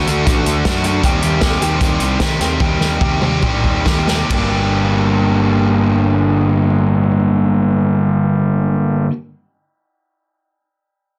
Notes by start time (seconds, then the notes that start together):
0.06 D2 D3 A3 D4 F#4, closed hi-hat
0.25 A1 D3 A3 D4 F#4, kick, closed hi-hat
0.46 D2, closed hi-hat
0.65 F#2 D3 A3 D4 F#4, kick, snare, closed hi-hat
0.84 D3 A3 D4 F#4, closed hi-hat
1.03 D#2 D#3 G3 C4 G4, kick, closed hi-hat
1.22 D#2, closed hi-hat
1.41 D#2 D#3 G3 C4 G4, kick, snare, closed hi-hat
1.60 D#2 D#3 G3 C4 G4, closed hi-hat
1.81 D#2 D#3 G3 C4 G4, kick, closed hi-hat
2.00 C2, closed hi-hat
2.20 D#3 G3 C4 G4, kick, snare, closed hi-hat
2.40 D#2 D#3 G3 C4 G4, snare, closed hi-hat
2.60 D#2 D#3 G3 C4 G4, kick, high tom
2.80 D#2, snare
3.01 D#2 D#3 G3 C4 G4, kick, mid tom
3.21 D#2 D#3 G3 C4 G4, mid tom
3.42 A#1 D#3 G3 C4 G4, kick, mid tom
3.64 D#2, kick
3.85 D#2 D#3 G3 C4 G4, kick, snare
4.07 D#3 G3 C4 G4, snare
4.29 G1 G2 D3 G3 A#3 D4, kick, ride
4.33 G4